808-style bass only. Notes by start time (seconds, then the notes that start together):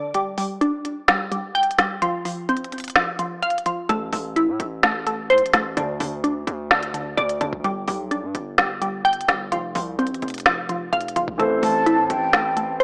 3.89 A1
4.13 A1
4.48 A2
4.60 A1
5.30 A2
5.42 A1
5.54 A1
5.77 D2
6.00 D2
6.47 D2
7.17 D2
7.41 D2
7.64 G1
7.88 B1
8.23 G2
8.35 G1
9.28 G1
9.52 F1
9.75 C2
10.11 A1
10.22 F1
10.93 F1
11.16 F1
11.40 A1
11.63 A1
11.98 A2
12.10 A1
12.80 A2